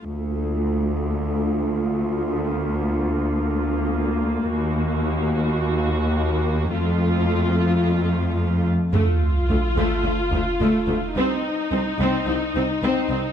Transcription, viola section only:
\new Staff \with { instrumentName = "Viola section" } { \time 4/4 \key d \phrygian \tempo 4 = 108 << { f'1~ | f'1 | ges'1 | f'2.~ f'8 r8 |
f'1 | ees'1 | } \\ { a1 | bes1~ | bes1 | a2.~ a8 r8 |
a8 r8 a8 a8 a8 a8 a8 a8 | c'8 r8 c'8 c'8 c'8 c'8 c'8 c'8 | } >> }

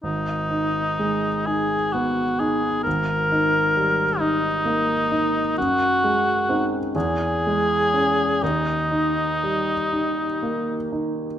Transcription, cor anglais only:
\new Staff \with { instrumentName = "Cor anglais" } { \time 6/8 \key gis \minor \tempo 4. = 42 dis'4. gis'8 fis'8 gis'8 | ais'4. dis'4. | fis'4 r8 gis'4. | dis'2~ dis'8 r8 | }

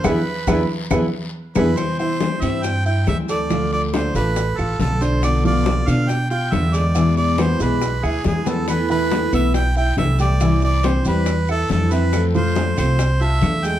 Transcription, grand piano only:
\new Staff \with { instrumentName = "Grand piano" } { \time 4/4 \key c \major \tempo 4 = 139 <e' gis' b'>8 r8 <e' gis' b'>8 r8 <e' gis' b'>8 r4 <e' gis' b'>8 | r8 <e e'>4 <c' c''>4 <e' e''>4 <a a'>8 | <f f'>4 <d' d''>8 <a a'>4 <f' f''>4 <d' d''>8~ | <d' d''>8 <f f'>4 <d' d''>4 <f' f''>4 <gis gis'>8 |
<e e'>4 <b b'>8 <gis gis'>4 <e' e''>4 <b b'>8~ | <b b'>8 <e e'>4 <b b'>4 <e' e''>4 <g g'>8 | <e e'>4 <c' c''>8 <g g'>4 <e' e''>4 <c' e''>8~ | <c' e''>8 <f f'>4 <c' c''>4 <f' a''>4 <gis gis'>8 | }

